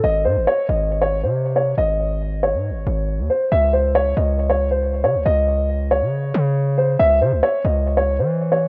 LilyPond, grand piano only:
\new Staff \with { instrumentName = "Grand piano" } { \time 4/4 \key gis \phrygian \tempo 4 = 138 dis''8 bis'8 cis''8 dis''8. cis''8 bis'8. cis''8 | dis''4. cis''2 bis'8 | e''8 bis'8 cis''8 dis''8. cis''8 bis'8. cis''8 | dis''4. cis''2 bis'8 |
e''8 bis'8 cis''8 dis''8. cis''8 bis'8. cis''8 | }